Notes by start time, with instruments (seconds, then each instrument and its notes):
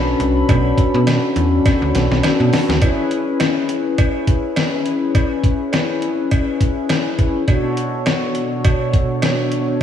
Already playing: fm bass B1, analog polysynth C#4 D4 F#4 A4, brass ensemble A4 B4 C#5 B5
0.20 fm bass C2, closed hi-hat
0.49 fm bass B1, kick, closed hi-hat, cowbell
0.78 kick, closed hi-hat
0.94 fm bass B2
1.07 snare, closed hi-hat, cowbell
1.36 fm bass E2, closed hi-hat
1.66 kick, snare, closed hi-hat, cowbell
1.82 fm bass D2
1.95 fm bass B1, snare, closed hi-hat
2.11 fm bass B1, snare
2.23 snare, closed hi-hat, cowbell
2.40 fm bass B2
2.53 snare, open hi-hat
2.69 fm bass D2, snare
2.81 analog polysynth C#4 E4 G#4 B4, kick, closed hi-hat, cowbell
3.11 closed hi-hat
3.40 snare, closed hi-hat, cowbell
3.69 closed hi-hat
3.98 kick, closed hi-hat, cowbell
4.27 kick, closed hi-hat
4.56 snare, closed hi-hat, cowbell
4.86 closed hi-hat
5.15 kick, closed hi-hat, cowbell
5.44 kick, closed hi-hat
5.73 snare, closed hi-hat, cowbell
6.02 closed hi-hat
6.31 kick, closed hi-hat, cowbell
6.61 kick, closed hi-hat
6.89 snare, closed hi-hat, cowbell
7.19 kick, closed hi-hat
7.47 analog polysynth B2 D4 F#4 A4 C#5, kick, closed hi-hat, cowbell
7.77 closed hi-hat
8.06 snare, closed hi-hat, cowbell
8.35 closed hi-hat
8.64 kick, closed hi-hat, cowbell
8.94 kick, closed hi-hat
9.22 snare, closed hi-hat, cowbell
9.52 closed hi-hat